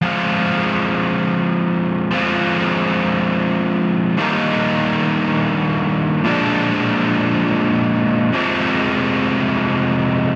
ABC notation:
X:1
M:6/8
L:1/8
Q:3/8=58
K:Fdor
V:1 name="Overdriven electric guitar" clef=bass
[F,A,CF]6 | [F,A,CF]6 | [G,,E,G,B,E]6 | [B,,F,A,D]6 |
[F,,C,F,A,C]6 |]